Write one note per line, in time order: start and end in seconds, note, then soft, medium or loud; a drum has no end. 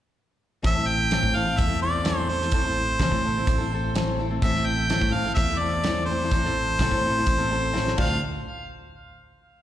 0.62 1.19 A1 loud
0.62 0.75 A2 medium
0.62 0.75 E3 medium
0.62 0.75 A3 medium
0.62 0.76 C4 medium
0.62 0.75 E4 medium
0.62 0.75 A4 medium
0.62 0.88 E5 loud
0.62 kick loud
0.62 closed hi-hat medium
0.76 1.11 A3 soft
0.76 1.12 C4 soft
0.76 1.11 E4 soft
0.76 1.11 A4 soft
0.87 1.37 G5 loud
1.11 1.35 A2 medium
1.11 1.35 E3 medium
1.11 1.33 A3 medium
1.11 1.34 C4 medium
1.11 1.34 E4 medium
1.11 1.35 A4 medium
1.11 snare loud
1.11 closed hi-hat medium
1.22 1.33 A2 medium
1.22 kick medium
1.34 1.56 A1 medium
1.34 1.45 A3 medium
1.34 1.45 C4 medium
1.34 1.44 E4 medium
1.34 1.43 A4 medium
1.34 1.60 F5 medium
1.45 1.69 A3 soft
1.45 1.68 C4 soft
1.45 1.67 E4 soft
1.45 1.66 A4 soft
1.59 2.52 E2 loud
1.59 1.81 E5 medium
1.59 kick loud
1.59 closed hi-hat medium
1.67 1.81 A3 soft
1.67 1.82 C4 medium
1.67 1.81 E4 medium
1.67 1.80 A4 medium
1.82 2.04 A3 medium
1.82 2.04 C4 medium
1.82 2.04 E4 medium
1.82 2.04 A4 medium
1.82 2.18 D5 medium
2.03 2.28 A2 medium
2.03 2.28 E3 medium
2.03 2.28 A3 medium
2.03 2.29 C4 medium
2.03 2.29 E4 medium
2.03 2.29 A4 medium
2.03 snare loud
2.03 closed hi-hat medium
2.18 2.29 C5 medium
2.29 2.41 A3 medium
2.29 2.41 C4 medium
2.29 2.41 E4 medium
2.29 2.41 A4 medium
2.29 4.18 C5 loud
2.42 2.52 A3 soft
2.42 2.53 C4 soft
2.42 2.53 E4 soft
2.42 2.53 A4 medium
2.42 snare soft
2.52 2.96 A1 loud
2.52 2.64 A2 medium
2.52 2.65 E3 medium
2.52 2.65 A3 medium
2.52 2.65 C4 medium
2.52 2.65 E4 medium
2.52 2.63 A4 medium
2.52 kick loud
2.52 closed hi-hat medium
2.65 3.01 A3 soft
2.65 3.01 C4 soft
2.65 3.01 E4 medium
2.65 3.00 A4 soft
2.99 3.10 C2 loud
2.99 3.25 A2 medium
2.99 3.25 E3 medium
2.99 3.23 A3 medium
2.99 3.23 C4 loud
2.99 3.24 E4 medium
2.99 kick medium
2.99 snare loud
2.99 closed hi-hat medium
3.04 3.24 A4 medium
3.11 3.44 A2 medium
3.11 kick medium
3.24 3.36 A3 medium
3.24 3.36 C4 medium
3.24 3.36 E4 medium
3.24 3.35 A4 medium
3.36 3.60 A3 medium
3.36 3.59 C4 medium
3.36 3.59 E4 medium
3.36 3.57 A4 medium
3.47 4.38 A1 medium
3.47 kick loud
3.47 closed hi-hat medium
3.58 3.71 A3 medium
3.58 3.71 C4 medium
3.58 3.72 E4 medium
3.58 3.70 A4 medium
3.72 3.95 A3 medium
3.72 3.95 C4 medium
3.72 3.94 E4 medium
3.72 3.95 A4 medium
3.94 4.18 A2 medium
3.94 4.18 E3 medium
3.94 4.17 A3 medium
3.94 4.18 C4 loud
3.94 4.19 E4 medium
3.94 4.19 A4 medium
3.94 snare loud
3.94 closed hi-hat medium
4.18 4.30 A3 medium
4.18 4.30 C4 medium
4.18 4.30 E4 medium
4.18 4.29 A4 medium
4.30 4.42 A3 soft
4.30 4.42 C4 medium
4.30 4.43 E4 soft
4.30 4.42 A4 medium
4.41 4.97 A1 loud
4.41 4.54 A2 medium
4.41 4.55 E3 medium
4.41 4.55 A3 medium
4.41 4.55 C4 medium
4.41 4.54 E4 medium
4.41 4.52 A4 medium
4.41 4.67 E5 loud
4.41 kick loud
4.41 closed hi-hat medium
4.54 4.89 A3 medium
4.54 4.89 C4 medium
4.54 4.88 E4 medium
4.54 4.89 A4 medium
4.54 snare soft
4.66 5.14 G5 loud
4.89 5.13 A2 medium
4.89 5.13 E3 medium
4.89 5.11 A3 medium
4.89 5.12 C4 medium
4.89 5.13 E4 medium
4.89 5.13 A4 medium
4.89 snare loud
4.89 closed hi-hat medium
5.01 5.12 A2 medium
5.01 kick medium
5.12 5.34 A1 medium
5.12 5.24 A3 medium
5.12 5.25 C4 medium
5.12 5.25 E4 medium
5.12 5.24 A4 medium
5.12 5.34 F5 medium
5.25 5.50 A3 soft
5.25 5.49 C4 soft
5.25 5.49 E4 medium
5.25 5.48 A4 medium
5.35 6.31 E2 loud
5.35 5.60 E5 loud
5.35 kick loud
5.35 closed hi-hat medium
5.49 5.60 A3 soft
5.49 5.60 C4 soft
5.49 5.62 E4 medium
5.49 5.61 A4 medium
5.58 5.85 A3 medium
5.58 5.85 C4 medium
5.58 6.05 D5 loud
5.63 5.85 E4 medium
5.63 5.86 A4 medium
5.84 6.09 A2 medium
5.84 6.09 E3 medium
5.84 6.09 A3 medium
5.84 6.10 C4 medium
5.84 6.09 E4 medium
5.84 snare loud
5.84 closed hi-hat medium
5.88 6.10 A4 medium
6.06 7.93 C5 loud
6.10 6.21 A3 medium
6.10 6.22 C4 medium
6.10 6.22 E4 medium
6.10 6.22 A4 medium
6.24 6.33 A3 medium
6.24 6.33 C4 medium
6.24 6.33 E4 medium
6.24 6.33 A4 medium
6.31 6.75 A1 loud
6.31 6.44 A2 medium
6.31 6.44 E3 medium
6.31 6.45 A3 medium
6.31 6.45 C4 medium
6.31 6.45 E4 medium
6.31 6.44 A4 medium
6.31 kick loud
6.31 closed hi-hat medium
6.45 6.80 A3 soft
6.45 6.81 C4 medium
6.45 6.81 E4 medium
6.45 6.80 A4 medium
6.45 snare soft
6.79 6.90 C2 medium
6.79 7.04 A2 medium
6.79 7.04 E3 loud
6.79 7.04 A3 loud
6.79 7.04 C4 loud
6.79 7.04 E4 loud
6.79 7.05 A4 loud
6.79 kick medium
6.79 snare loud
6.79 closed hi-hat medium
6.91 7.24 A2 medium
6.91 kick medium
7.05 7.16 A3 medium
7.05 7.16 C4 medium
7.05 7.16 E4 medium
7.05 7.16 A4 medium
7.17 7.39 A3 medium
7.17 7.38 C4 medium
7.17 7.38 E4 medium
7.17 7.37 A4 medium
7.26 7.94 A1 medium
7.26 kick loud
7.26 closed hi-hat medium
7.38 7.48 A3 medium
7.38 7.49 C4 medium
7.38 7.50 E4 medium
7.38 7.50 A4 medium
7.50 7.72 A3 medium
7.50 7.72 C4 medium
7.50 7.73 E4 medium
7.50 7.73 A4 medium
7.73 7.97 A2 medium
7.73 7.96 E3 medium
7.73 7.96 A3 medium
7.73 7.97 C4 medium
7.73 7.97 E4 medium
7.73 7.98 A4 loud
7.73 snare medium
7.87 snare medium
7.96 8.20 D2 medium
7.96 8.16 D3 medium
7.96 8.17 A3 loud
7.96 8.17 D4 medium
7.96 8.17 F4 loud
7.96 8.17 A4 medium
7.96 8.21 F5 medium
7.96 kick loud
7.96 crash medium